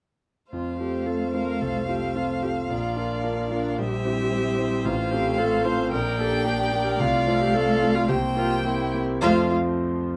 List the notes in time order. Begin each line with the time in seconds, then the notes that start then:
0.52 F2 A3 F4 C5 F5
0.79 C4 F4 G4 A4
1.06 C4 F4 A4
1.34 C4 F4 A4 A#4
1.61 C2 A4
1.88 C4 F4 G4 A4
2.15 C4 F4 A4
2.42 C4 F4 G4 A4
2.69 A#1 A#3 F4 D5
2.96 D4 F4 A#4
3.23 D4 F4 A#4
3.50 D4 F4 A#4
3.78 A#1 G3 G4 C5 E5
4.05 C4 E4 G4
4.32 C4 E4 G4
4.59 C4 E4 G4
4.85 A1 A3 F4 F5
5.11 C4 F4 G4 A4
5.38 C4 F4 A4
5.65 C4 F4 A4 C5
5.91 A#1 A#3 A#4 D5 G5
6.18 A#3 D4 G4 A4
6.45 A#3 D4 G4
6.72 A#3 D4 G4
6.86 A#4
6.99 C2 A3 F4 F5
7.27 A3 C4 F4
7.41 G4
7.54 A3 C4 F4 A4
7.82 A3 C4 F4
7.95 F4
8.07 C2 A#3 G4 C5 G5
8.36 A#3 C4 F4 G4
8.65 A#3 C4 E4 G4
8.94 A#3 C4 G4
9.21 F2 F3 A3 C4 F4 C5 F5